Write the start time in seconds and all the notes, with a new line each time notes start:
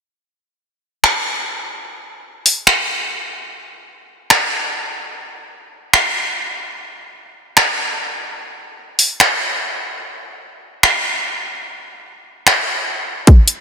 1.04 finger snap
2.46 open hi-hat
2.67 finger snap
4.30 finger snap
5.93 finger snap
7.57 finger snap
8.99 open hi-hat
9.20 finger snap
10.83 finger snap
12.47 finger snap
13.27 kick, closed hi-hat
13.48 closed hi-hat